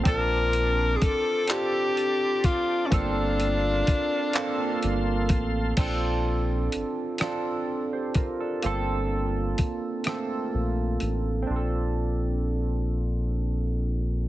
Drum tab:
CC |------|------|x-----|------|
HH |xxxxxx|xxxxxx|x-xx-x|x-xx-x|
CP |---x--|---x--|------|------|
SD |------|------|---r--|---r--|
BD |o-o--o|o-o--o|o----o|--o---|

CC |------|
HH |------|
CP |------|
SD |------|
BD |------|